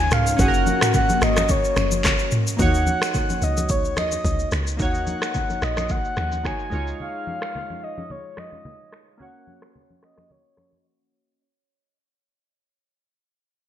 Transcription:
Already playing: D#2 C#3 C#4 D#4 F4 G#5
0.11 C#2 F5, finger snap, cross-stick, mid tom, shaker
0.27 shaker
0.37 F#1 A#3 C#4 F#4 F#5, kick, low conga, shaker
0.42 G#4
0.48 A#4
0.54 shaker
0.67 high conga, shaker
0.81 finger snap, cross-stick, mid tom, shaker
0.94 F#5, kick, low conga, shaker
1.09 high conga, shaker
1.22 G#1 D#5, finger snap, cross-stick, shaker
1.37 finger snap, cross-stick, high conga, shaker
1.49 C#5, kick, low conga, shaker
1.64 shaker
1.76 F#1, finger snap, cross-stick, high conga, shaker
1.91 high conga, shaker
2.04 finger snap, kick, cross-stick, clap, low conga, shaker
2.19 shaker
2.31 mid tom, shaker
2.47 shaker
2.57 D#2 A#3 D#4 F#4 F#5, kick, low conga, shaker
2.62 C#5
2.74 shaker
2.87 high conga, shaker
3.02 finger snap, cross-stick, shaker
3.14 kick, low conga, shaker
3.30 high conga, shaker
3.42 C#2 D#5, shaker
3.57 high conga, shaker
3.69 C#5, kick, low conga, shaker
3.85 shaker
3.97 D#2 D#5, finger snap, cross-stick, high conga, shaker
4.12 high conga, shaker
4.25 C#2, kick, low conga, shaker
4.39 shaker
4.52 C#2, finger snap, cross-stick, shaker
4.67 shaker
4.77 D#2 A#3 D#4 F#4, kick, low conga, shaker
4.81 C#5 F#5
4.95 shaker
5.07 high conga, shaker
5.22 finger snap, cross-stick, shaker
5.34 kick, low conga, shaker
5.50 high conga, shaker
5.62 A#1 D#5, finger snap, cross-stick, shaker
5.77 finger snap, cross-stick, high conga, shaker
5.89 F#5, kick, low conga, shaker
6.05 shaker
6.17 D#2, finger snap, cross-stick, high conga, shaker
6.32 high conga, shaker
6.44 A#3 D#4 F#4 C#5 G#5, finger snap, kick, cross-stick, low conga, shaker
6.59 shaker
6.70 C#2 G#3 D#4 F4, shaker
6.75 C#5
6.87 shaker
7.00 F5, low conga
7.27 high conga
7.42 finger snap, cross-stick
7.55 low conga
7.70 high conga
7.84 D#5
7.98 high conga
8.10 C#5, low conga
8.37 D#5, finger snap, cross-stick, high conga
8.53 high conga
8.65 low conga
8.93 finger snap, cross-stick
9.18 A#3 C#4 F#4 F#5, low conga
9.23 C#5
9.47 high conga
9.62 finger snap, cross-stick
9.76 low conga
9.90 high conga
10.03 D#5, finger snap, cross-stick
10.17 finger snap, cross-stick, high conga
10.30 C#5, low conga
10.57 finger snap, cross-stick, high conga
10.73 high conga

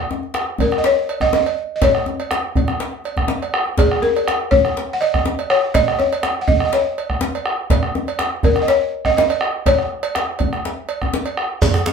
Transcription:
0.11 djembe tone
0.23 djembe slap
0.34 bombo rim, djembe slap
0.58 A#4, bombo rim, bombo low, cowbell, djembe bass
0.72 bombo rim, djembe slap, djembe tone
0.78 D#5
0.84 C#5, djembe slap
0.96 bombo rim
1.09 cowbell
1.21 D#5, bombo rim, bombo low, djembe bass
1.33 D#5, djembe slap, djembe tone
1.46 cowbell
1.76 D#5
1.82 C#5, bombo low, cowbell, djembe slap, djembe bass
1.95 bombo rim
2.06 djembe tone
2.19 cowbell, djembe slap
2.31 bombo rim, djembe slap
2.55 bombo rim, bombo low, cowbell, djembe bass
2.68 bombo rim, djembe slap, djembe tone
2.80 djembe slap
2.93 bombo rim
3.04 cowbell, djembe slap
3.17 bombo rim, bombo low, djembe slap, djembe bass
3.28 bombo rim, djembe slap, djembe tone
3.42 bombo rim, cowbell
3.53 bombo rim, djembe slap
3.66 bombo rim, djembe slap
3.78 G#4, bombo rim, bombo low, cowbell, djembe slap, djembe bass
3.92 bombo rim
4.02 A#4, djembe slap, djembe tone
4.16 cowbell, djembe slap
4.28 bombo rim, djembe slap
4.51 C#5, bombo rim, bombo low, djembe bass
4.65 bombo rim, djembe slap, djembe tone
4.77 bombo rim, djembe slap
4.90 F#5, bombo rim
5.01 D#5, cowbell
5.14 bombo rim, bombo low, djembe bass
5.26 bombo rim, djembe slap, djembe tone
5.39 cowbell
5.50 C#5, bombo rim
5.74 D#5, bombo rim, bombo low, cowbell, djembe slap, djembe bass
5.88 bombo rim
5.99 C#5, djembe slap, djembe tone
6.12 cowbell, djembe slap
6.23 bombo rim, djembe slap
6.41 F#5
6.48 D#5, bombo rim, bombo low, djembe bass
6.60 bombo rim, djembe slap, djembe tone
6.65 D#5
6.73 C#5, bombo rim, djembe slap
6.86 bombo rim
6.98 cowbell
7.10 bombo rim, bombo low
7.21 bombo rim, djembe slap, djembe tone
7.35 cowbell
7.46 bombo rim
7.70 bombo rim, bombo low, cowbell, djembe slap, djembe bass
7.83 bombo rim
7.95 djembe slap, djembe tone
8.07 cowbell, djembe slap
8.19 bombo rim, djembe slap
8.43 A#4, bombo rim, bombo low, cowbell, djembe bass
8.56 bombo rim, djembe slap, djembe tone
8.62 D#5
8.68 C#5, bombo rim, djembe slap
9.05 D#5, bombo rim, bombo low, djembe bass
9.17 D#5, bombo rim, djembe slap, djembe tone
9.30 cowbell
9.41 bombo rim
9.66 C#5, bombo low, cowbell, djembe slap, djembe bass
9.79 bombo rim
9.91 bombo rim
10.03 cowbell
10.15 bombo rim, djembe slap
10.29 bombo rim
10.39 bombo rim, bombo low, cowbell, djembe bass
10.53 bombo rim, djembe tone
10.65 djembe slap
10.89 cowbell
11.02 bombo rim, bombo low, djembe bass
11.14 djembe slap, djembe tone
11.26 cowbell
11.37 bombo rim
11.50 bombo rim
11.62 bombo rim, bombo low, cowbell, djembe slap, djembe tone, djembe bass, shekere
11.74 bombo rim, djembe tone
11.86 djembe slap, djembe tone

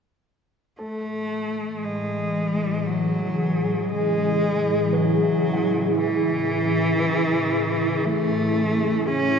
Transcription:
0.79 A2 A3 A4
0.92 E3
1.84 G#3
2.05 C#3
2.17 G#4
2.87 F#3
3.79 E4
3.89 G#3
4.93 F#3 B4
5.23 E5
5.53 F#5
5.97 E3
6.99 B4
8.05 A3
9.07 C#4 G#4

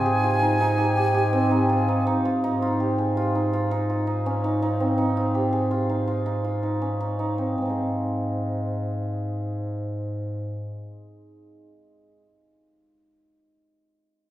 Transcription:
Already playing: G#2 C4 D#4 F4 G4 G#5
0.06 G#4
0.24 F4
0.42 D#4
0.61 D#4
0.78 G4
0.97 G4
1.14 G4
1.33 C4
1.51 D#4
1.69 F4
1.88 D#4
2.07 D#4
2.25 F4
2.44 G#2 D#4
2.62 F4
2.80 G4
2.98 G#4
3.17 F4
3.35 D#4
3.53 F4
3.71 D#4
3.90 F4
4.07 D#4
4.26 C#4
4.44 D#4
4.62 D#4
4.80 C4
4.98 D#4
5.17 F4
5.35 G4
5.53 G#4
5.71 F4
5.90 D#4
6.08 F4
6.26 D#4
6.44 F4
6.63 D#4
6.82 C#4
7.01 D#4
7.19 D#4
7.38 C4
7.57 G#2 G#3
7.62 C4 D#4
7.70 G#4

